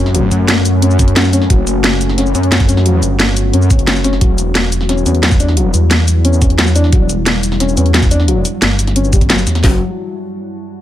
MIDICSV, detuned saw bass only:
0, 0, Header, 1, 2, 480
1, 0, Start_track
1, 0, Tempo, 338983
1, 205, Time_signature, 4, 2, 24, 8
1, 15314, End_track
2, 0, Start_track
2, 0, Title_t, "Detuned saw bass"
2, 0, Program_c, 0, 39
2, 0, Note_on_c, 0, 42, 95
2, 426, Note_off_c, 0, 42, 0
2, 446, Note_on_c, 0, 42, 98
2, 2106, Note_off_c, 0, 42, 0
2, 2125, Note_on_c, 0, 30, 97
2, 3306, Note_off_c, 0, 30, 0
2, 3325, Note_on_c, 0, 42, 94
2, 3546, Note_off_c, 0, 42, 0
2, 3565, Note_on_c, 0, 42, 98
2, 4266, Note_off_c, 0, 42, 0
2, 4285, Note_on_c, 0, 31, 98
2, 4986, Note_off_c, 0, 31, 0
2, 5005, Note_on_c, 0, 42, 99
2, 5226, Note_off_c, 0, 42, 0
2, 5245, Note_on_c, 0, 30, 97
2, 5946, Note_off_c, 0, 30, 0
2, 5965, Note_on_c, 0, 28, 102
2, 7146, Note_off_c, 0, 28, 0
2, 7165, Note_on_c, 0, 40, 94
2, 7386, Note_off_c, 0, 40, 0
2, 7405, Note_on_c, 0, 40, 97
2, 8106, Note_off_c, 0, 40, 0
2, 8125, Note_on_c, 0, 40, 101
2, 9786, Note_off_c, 0, 40, 0
2, 9805, Note_on_c, 0, 28, 95
2, 10986, Note_off_c, 0, 28, 0
2, 11005, Note_on_c, 0, 40, 98
2, 11226, Note_off_c, 0, 40, 0
2, 11245, Note_on_c, 0, 40, 99
2, 11946, Note_off_c, 0, 40, 0
2, 12205, Note_on_c, 0, 31, 97
2, 13386, Note_off_c, 0, 31, 0
2, 13405, Note_on_c, 0, 40, 99
2, 13626, Note_off_c, 0, 40, 0
2, 13645, Note_on_c, 0, 30, 100
2, 13868, Note_off_c, 0, 30, 0
2, 15314, End_track
0, 0, End_of_file